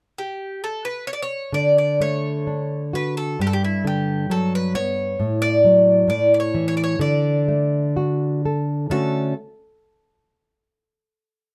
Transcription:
0.18 0.63 G4 medium
0.64 0.83 A4 medium
0.85 1.07 B4 medium
1.07 1.13 C#5 medium
1.13 1.20 D5 medium
1.22 1.54 C#5 medium
1.53 3.36 D3 medium
1.53 1.77 D5 medium
1.78 2.00 D5 medium
2.00 2.46 A3 soft
2.00 2.91 C#5 medium
2.47 2.93 D4 soft
2.93 3.39 F#4 soft
2.93 3.16 B4 medium
3.17 3.39 A4 medium
3.39 5.15 G2 medium
3.39 3.47 G4 medium
3.47 3.52 A4 medium
3.53 3.64 G4 medium
3.64 3.87 E4 medium
3.84 4.29 D3 soft
3.84 4.33 G4 medium
4.30 4.73 F#3 soft
4.30 4.54 A4 medium
4.55 4.75 B4 medium
4.75 5.18 B3 medium
4.75 5.38 C#5 medium
5.20 6.07 A2 medium
5.42 6.08 D5 medium
5.64 6.08 F#3 soft
6.08 6.97 A2 medium
6.08 6.33 D5 medium
6.34 6.39 D5 medium
6.40 6.67 C#5 medium
6.54 6.99 E3 medium
6.68 6.76 C#5 medium
6.77 6.83 D5 medium
6.84 7.01 C#5 medium
6.99 8.86 D3 medium
6.99 8.40 D5 medium
7.48 7.95 A3 soft
7.97 8.43 F#4 soft
8.45 8.90 A4 soft
8.90 9.33 D3 soft
8.90 9.33 A3 soft
8.90 9.33 C#4 soft
8.90 9.34 D4 soft
8.90 9.34 F#4 medium
8.90 9.33 A4 medium

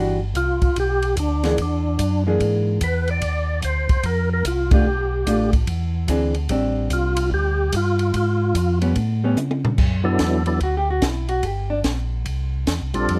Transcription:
0.00 0.34 G1 medium
0.00 0.18 E3 medium
0.00 0.18 G3 medium
0.00 0.19 D4 medium
0.00 0.19 F#4 medium
0.35 0.60 C2 medium
0.35 0.78 F4 medium
0.35 kick soft
0.35 hi-hat pedal medium
0.35 ride medium
0.62 0.69 C2 soft
0.62 kick soft
0.62 ride soft
0.76 1.16 B1 medium
0.76 1.16 G4 loud
0.76 kick soft
0.76 ride medium
1.02 ride soft
1.17 1.57 D2 medium
1.17 1.56 D4 medium
1.17 kick soft
1.17 hi-hat pedal soft
1.17 ride medium
1.43 1.56 E3 medium
1.43 1.57 A#3 medium
1.43 1.57 D4 medium
1.43 1.57 G#4 medium
1.43 snare soft
1.43 ride soft
1.58 1.98 E2 medium
1.58 2.23 D4 medium
1.58 kick soft
1.58 ride medium
1.99 2.39 F#2 medium
1.99 kick soft
1.99 hi-hat pedal medium
1.99 ride medium
2.27 2.79 E3 medium
2.27 2.79 A#3 medium
2.27 2.79 D4 medium
2.27 2.79 G#4 medium
2.40 2.80 G#2 medium
2.40 kick soft
2.40 ride medium
2.81 3.21 E2 medium
2.81 3.10 B4 medium
2.81 kick soft
2.81 hi-hat pedal medium
2.81 ride medium
3.08 3.61 D5 loud
3.08 ride soft
3.22 3.62 D#2 medium
3.22 kick soft
3.22 ride medium
3.62 3.88 D2 medium
3.62 4.06 C5 medium
3.62 kick soft
3.62 hi-hat pedal soft
3.62 ride medium
3.89 3.97 D2 soft
3.89 kick medium
3.89 ride soft
4.03 4.43 F2 medium
4.03 4.30 A#4 medium
4.03 kick soft
4.03 ride medium
4.33 4.45 A#4 medium
4.45 4.85 C2 medium
4.45 4.71 F4 medium
4.45 kick soft
4.45 hi-hat pedal medium
4.45 ride medium
4.71 4.84 A3 medium
4.71 4.85 D4 medium
4.71 4.85 F4 medium
4.71 5.50 G4 medium
4.71 kick medium
4.71 ride medium
4.85 5.25 B1 medium
5.26 5.66 A1 medium
5.26 5.51 A3 medium
5.26 5.51 D4 medium
5.26 5.51 F4 medium
5.26 kick soft
5.26 hi-hat pedal medium
5.26 ride medium
5.53 kick medium
5.53 ride soft
5.67 6.07 E2 medium
5.67 kick soft
5.67 ride medium
6.08 6.48 D2 medium
6.08 6.33 E3 soft
6.08 6.33 C4 medium
6.08 6.33 D4 medium
6.08 6.33 G#4 medium
6.08 kick soft
6.08 hi-hat pedal medium
6.08 ride medium
6.34 ride soft
6.49 6.89 A1 medium
6.49 7.64 G3 medium
6.49 7.65 C4 medium
6.49 7.65 D4 medium
6.49 kick soft
6.49 ride medium
6.90 7.30 C2 medium
6.90 7.30 F4 medium
6.90 kick soft
6.90 hi-hat pedal medium
6.90 ride medium
7.17 ride medium
7.31 7.71 D2 medium
7.31 7.75 G4 loud
7.31 kick soft
7.72 8.13 G2 medium
7.72 8.15 F4 medium
7.72 kick soft
7.72 hi-hat pedal soft
7.72 ride medium
7.99 ride soft
8.13 8.54 G#2 medium
8.13 8.79 F4 medium
8.13 kick soft
8.13 ride medium
8.54 8.95 F2 medium
8.54 kick soft
8.54 hi-hat pedal soft
8.54 ride medium
8.82 8.95 G3 medium
8.82 8.95 B3 medium
8.82 8.95 C#4 medium
8.82 ride soft
8.96 9.36 A2 medium
8.96 kick soft
8.96 ride soft
9.24 9.36 G3 medium
9.24 9.37 B3 medium
9.24 9.37 C#4 medium
9.37 9.77 C#3 medium
9.37 hi-hat pedal medium
9.37 high tom soft
9.51 high tom soft
9.65 floor tom medium
9.78 10.18 F#2 medium
9.78 kick medium
9.78 crash medium
10.04 10.43 F#3 medium
10.04 10.43 B3 medium
10.04 10.44 D4 medium
10.04 10.44 E4 medium
10.04 10.44 A4 medium
10.19 10.59 E2 medium
10.19 kick soft
10.19 snare medium
10.19 hi-hat pedal soft
10.19 ride medium
10.46 10.60 F#3 medium
10.46 10.60 B3 soft
10.46 10.60 D4 medium
10.46 10.60 E4 soft
10.46 10.60 A4 medium
10.46 ride soft
10.60 11.01 D2 medium
10.60 10.76 F#4 medium
10.60 kick soft
10.60 ride soft
10.77 10.89 G4 medium
10.90 11.05 F#4 medium
11.02 11.42 B1 medium
11.02 11.29 E4 medium
11.02 kick soft
11.02 snare medium
11.02 hi-hat pedal medium
11.02 ride medium
11.29 11.45 F#4 medium
11.29 ride soft
11.43 11.83 G1 medium
11.43 11.70 G4 medium
11.43 kick soft
11.43 ride medium
11.70 11.79 D4 medium
11.84 12.25 A#1 medium
11.84 kick soft
11.84 snare medium
11.84 hi-hat pedal soft
11.84 ride medium
12.26 12.66 C2 medium
12.26 kick soft
12.26 ride medium
12.67 12.81 E2 medium
12.67 kick soft
12.67 snare medium
12.67 hi-hat pedal soft
12.67 ride medium
12.82 12.95 C2 soft
12.94 13.08 A#1 medium
12.94 13.19 G3 medium
12.94 13.19 C4 medium
12.94 13.19 D4 medium
12.94 13.19 F4 medium
12.94 13.19 A4 medium
12.94 ride soft
13.09 13.19 F2 medium
13.09 kick soft
13.09 ride medium

